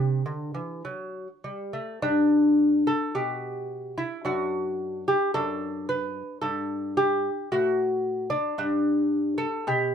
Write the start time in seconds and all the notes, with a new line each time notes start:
Already playing: C3 G4
0.26 D3
0.54 E3
0.85 F#3
1.44 G3
1.73 A3
2.02 G2 D4
2.87 A4
3.15 B2 G4
3.98 E4
4.25 F#2 D4 F#4
5.08 G4
5.34 F#2 D4 A4
5.89 B4
6.41 G2 A4
6.97 G4
7.52 A2 F#4
8.30 D4
8.58 G2 D4
9.38 A4
9.67 B2 G4